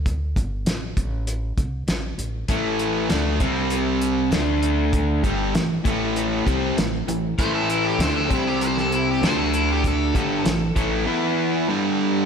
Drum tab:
HH |x-x-x-x-x-x-x-x-|x-x-x-x-x-x-x-x-|x-x-x-x-x-x-x-x-|x-x-x-x-x-x-x-x-|
SD |----o-------o---|----o-------o---|----o-------o---|----o----o--o---|
BD |o-o---o---o-----|o-----o---------|o-o---o---o-----|o-----o---------|

HH |x-x-x-x---------|
SD |----o-----------|
BD |o-o---o---------|